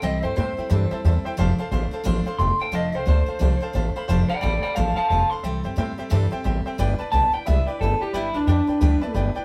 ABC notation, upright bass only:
X:1
M:4/4
L:1/8
Q:"Swing" 1/4=178
K:C
V:1 name="Upright bass" clef=bass
C,, G,, A,, z G,, z E,, z | F,,, z A,,, z A,,, z F,,, z | F,,, C,, D,, z C,, z A,,, z | F,,, z A,,, z A,,, z F,,, z |
C,, G,, A,, z G,, z A,,, z | G,,, z B,,, z C,, z G,,, z | G,,, D,, F,, z D,, z G,,, z |]